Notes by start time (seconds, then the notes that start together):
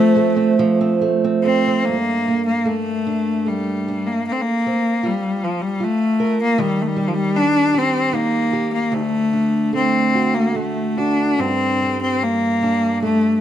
Already playing: F3 A3 C4
0.16 A3
0.36 C4
0.59 F3
0.81 C4
1.01 A3
1.24 C4
1.43 A3 C4
1.67 C4
1.85 G2 A#3
2.28 A#3
2.46 A#3
2.65 A3
3.07 D4
3.46 G3 A3
3.88 D4
4.07 A#3
4.27 A#3
4.32 C4
4.42 A#3
4.67 C4
5.03 G3 F4
5.44 F3
5.62 G3
5.80 F4
5.84 A3
6.20 A#4
6.43 A#3
6.58 D#3 G3
6.82 A3
6.87 G3
6.97 G3
7.08 F3
7.14 G3
7.37 D4
7.74 G4
7.78 C4
8.13 A#3 D#4
8.53 G4
8.73 A#3
8.92 D2 A3
9.33 D4
9.73 A3 C4
10.15 F#4
10.35 A#3
10.55 A3
10.98 D4 F#4
11.39 G2 C4
11.82 G3
12.02 C4
12.23 A#3
12.63 D4
13.02 A3